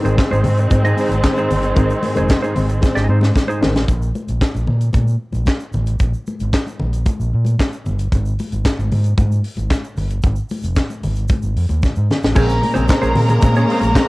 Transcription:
Already playing: D#3 G#3 C4
0.02 G#1 D#3 G#3 C4 G#4 C5, closed hi-hat, shaker
0.07 D#4
0.15 G#3 C4, kick, snare, closed hi-hat, muted conga, shaker
0.20 clap
0.29 G#1 G#2 G#4 C5, high conga, shaker
0.34 D#4
0.44 G#2 G#3 C4, open hi-hat, muted conga, low conga, shaker
0.57 muted clean electric guitar stroke, closed hi-hat, shaker
0.69 G#2 G#3 C4, muted clean electric guitar stroke, kick, closed hi-hat, muted conga, high conga, shaker
0.83 G#2 D#4 G#4 D#5, shaker
0.97 G#3 C4 D#4 G#4 C5, open hi-hat, muted conga, shaker
1.09 G#1, muted clean electric guitar stroke, closed hi-hat, high conga, shaker
1.23 G#3 C4, muted clean electric guitar stroke, kick, snare, clap, closed hi-hat, shaker
1.37 G#2 D#4 G#4 C5, shaker
1.49 G1 G#3 C4, open hi-hat, low conga, shaker
1.63 muted clean electric guitar stroke, closed hi-hat, shaker
1.75 G#1 D#3 G#3 C4 D#4 G#4, kick, closed hi-hat, shaker
1.80 C5
1.90 muted clean electric guitar stroke, shaker
2.03 G#2, muted clean electric guitar stroke, open hi-hat, muted conga, high conga
2.15 F1 D#3 G#3 C4 G#4 C5, closed hi-hat, shaker
2.19 D#4
2.28 G#3 C4, muted clean electric guitar stroke, kick, snare, clap, closed hi-hat, muted conga, shaker
2.42 G#2 D#4 G#4 C5, high conga, shaker
2.55 G#1 G#3 C4, open hi-hat, low conga, shaker
2.69 muted clean electric guitar stroke, closed hi-hat, shaker
2.81 G#3 C4, muted clean electric guitar stroke, kick, snare, high conga, shaker
2.95 G#1 G#2 D#4 G#4 D#5, snare, shaker
3.09 G#2 G#3 C4 D#4 G#4 C5
3.21 muted clean electric guitar stroke, snare, high conga, shaker
3.35 G#3 C4, muted clean electric guitar stroke, kick, snare, shaker
3.47 G#2 D#4 G#4 C5, shaker
3.61 A1 D#3 G#3 C4, muted clean electric guitar stroke, snare, low conga
3.76 muted clean electric guitar stroke, snare, shaker
3.88 A#1, kick, closed hi-hat, muted conga, shaker
4.02 shaker
4.15 high conga, shaker
4.28 A#1, closed hi-hat, shaker
4.41 kick, snare, clap, closed hi-hat, muted conga, shaker
4.55 A#1, high conga, shaker
4.67 A#2, low conga
4.81 closed hi-hat, shaker
4.93 A#2, kick, closed hi-hat, high conga, shaker
5.08 shaker
5.32 A#1, closed hi-hat, high conga, shaker
5.46 kick, snare, clap, closed hi-hat, muted conga, shaker
5.60 shaker
5.73 A1, muted conga, low conga, shaker
5.86 closed hi-hat, shaker
5.99 A#1, kick, closed hi-hat, muted conga, shaker
6.13 shaker
6.27 high conga, shaker
6.40 G#1, closed hi-hat, shaker
6.53 kick, snare, clap, closed hi-hat, muted conga, shaker
6.67 high conga, shaker
6.79 A#1, muted conga, low conga
6.93 closed hi-hat, shaker
7.06 kick, closed hi-hat, muted conga, high conga, shaker
7.20 A#1, shaker
7.34 A#2
7.45 closed hi-hat, high conga, shaker
7.59 kick, snare, clap, closed hi-hat, shaker
7.72 shaker
7.86 G1, low conga, shaker
7.99 closed hi-hat, shaker
8.12 G#1, kick, closed hi-hat, muted conga, shaker
8.26 shaker
8.39 open hi-hat, muted conga, high conga, shaker
8.52 G#1, closed hi-hat, shaker
8.65 kick, snare, clap, closed hi-hat, muted conga, shaker
8.79 G#1, high conga, shaker
8.92 G#2, open hi-hat, muted conga, low conga
9.04 closed hi-hat, shaker
9.18 G#2, kick, closed hi-hat, muted conga, high conga, shaker
9.32 shaker
9.44 open hi-hat
9.57 G#1, closed hi-hat, high conga, shaker
9.70 kick, snare, clap, closed hi-hat, muted conga, shaker
9.84 shaker
9.97 G1, open hi-hat, low conga, shaker
10.10 closed hi-hat, shaker
10.22 G#1, kick, closed hi-hat, shaker
10.36 shaker
10.49 open hi-hat, high conga, shaker
10.62 F1, closed hi-hat, shaker
10.75 kick, snare, clap, closed hi-hat, shaker
10.90 high conga, shaker
11.03 G#1, open hi-hat, low conga, shaker
11.16 closed hi-hat, shaker
11.28 kick, closed hi-hat, muted conga, high conga, shaker
11.42 G#1, shaker
11.56 F2, open hi-hat
11.69 D#2, closed hi-hat, high conga, shaker
11.82 kick, snare, shaker
11.96 G#2, shaker
12.11 snare, low conga
12.23 A1, snare, shaker
12.35 A#1 C#3 G#3 A#3 C4 C#4 G#4 A#4 C5 A#5, kick, crash, shaker
12.49 muted clean electric guitar stroke, shaker
12.61 A#2, muted clean electric guitar stroke, open hi-hat, high conga
12.74 A#1 C#3 G#3 C4 C#4 G#4 C5, closed hi-hat, shaker
12.87 G#3 C4, muted clean electric guitar stroke, kick, snare, clap, closed hi-hat, muted conga, shaker
13.02 A#1 A#2 C#4 G#4 C5, shaker
13.14 A#2 G#3 C4, muted clean electric guitar stroke, open hi-hat, muted conga, low conga
13.28 muted clean electric guitar stroke, closed hi-hat, low conga, shaker
13.41 A#2 G#3 C4, muted clean electric guitar stroke, kick, closed hi-hat, high conga, shaker
13.54 A#2 G#4 C#5, shaker
13.58 C#4
13.67 G#3 C4 C#4, open hi-hat
13.71 G#4 C5
13.81 A#1, muted clean electric guitar stroke, closed hi-hat, high conga, shaker
13.95 G#3 C4, muted clean electric guitar stroke, kick, snare, clap, closed hi-hat, shaker

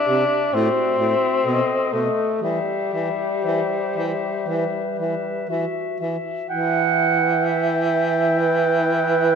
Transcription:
Already playing: D4
0.07 C3 G4 E5
0.53 A2 C4 F#4 E5
0.98 A2 F#4 E5
1.43 B2 A4 D#5
1.90 B2 A3 A4 D#5
2.41 E3 G3 G4 E5
2.93 E3 G4 E5
3.43 E3 C5 E5
3.96 E3 E5
4.47 E3 B4 E5
4.99 E3 E5
5.49 E3 F#4 E5
6.00 E3 E5
6.49 E3 E4 F#5 G5
7.45 E5
8.38 B4

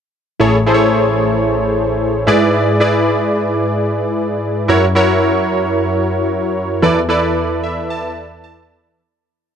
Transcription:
0.40 A1 A2 E4 G#4 A4 C#5
0.66 E4 G#4 A4 C5
0.74 C#5
2.27 G#2 E4 G#4 B4 D5
2.80 E4 G#4 B4 D5
4.68 F#2 E4 F#4 A#4 C#5
4.95 E4 F#4 A#4 C#5
6.82 E2 E3 E4 A4 B4 D5
7.09 E4 A4 B4 D5
7.63 E5
7.90 A5
8.44 A5

